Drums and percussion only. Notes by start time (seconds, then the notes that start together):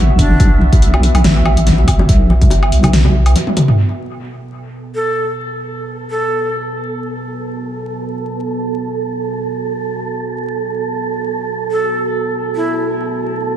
0.19 kick, open hi-hat, high bongo
0.40 kick, closed hi-hat, high bongo
0.61 high conga
0.72 kick, closed hi-hat, high bongo
0.82 closed hi-hat
0.94 high bongo, low woodblock
1.03 open hi-hat
1.15 closed hi-hat, high conga, low woodblock
1.24 snare, closed hi-hat, high bongo
1.46 high bongo, low woodblock
1.57 closed hi-hat
1.67 snare, closed hi-hat, high conga
1.78 high bongo
1.88 kick, open hi-hat, low woodblock
1.99 high bongo
2.09 kick, closed hi-hat
2.30 high bongo, high conga
2.41 kick, closed hi-hat, low conga
2.50 closed hi-hat, high bongo
2.63 low woodblock
2.72 open hi-hat
2.83 closed hi-hat, high bongo, high conga, low conga, low woodblock
2.93 snare, closed hi-hat
3.04 high bongo, low conga
3.26 closed hi-hat, low woodblock
3.36 closed hi-hat, high bongo, high conga
3.47 high tom
3.57 open hi-hat, mid tom, high bongo
3.68 mid tom